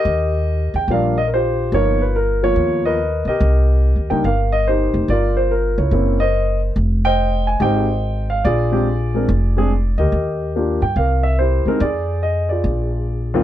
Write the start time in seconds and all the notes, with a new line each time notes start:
Already playing: G4 A#4 D#5
0.05 D#2
0.74 E2 G5
0.88 A#1 F3 G3 A#3 D4 F5
0.92 A#4 D5
1.18 D#5
1.27 A#4
1.34 F4 G4 C5
1.72 G1 F3 A#3 B3 D#4 F4 A#4 C#5
2.02 B4
2.16 A#4
2.43 F3 A#3 B3 F4 A#4 C#5
2.56 D#2
2.85 A#4 B4 D#5
3.25 B1 G4 A#4 D#5
3.40 C2
3.96 D#2
4.10 C#2 G3 A#3 D4 D#4 G5
4.24 G1 A#4 F5
4.52 D#5
4.67 D#4 G4 C5
4.94 F1
5.08 G1 F4 A#4 D5
5.37 C5
5.51 A#4
5.78 C#2 E4 A#4 C#5
5.91 F#1 A#3 C4 C#4 E4
6.20 A#4 C5 D#5
6.76 F1
7.05 C5 D#5 G5
7.47 G#5
7.60 G#1 G#3 C4 D#4 G4 C5 D#5 G5
8.30 F5
8.44 A#1 F4 G#4 D5
8.72 G#3 C4 D4 G4
9.14 G#3 C4 D4 A#4
9.29 F1
9.57 G#3 C4 D4 G#4
9.98 D2 G4 A#4 D#5
10.12 D#2
10.56 A#3 D4 F4 G4
10.82 G2 G5
10.96 C2 A#4 F5
11.23 E5
11.39 E4 G4 C5
11.65 G#3 C4 D#4 A#4, muted upright bass stroke
11.80 F2 G#4 D5
12.23 D#5
12.49 F4 G#4 D5
12.64 A#1
13.34 D#2 G3 A#3 C4 F4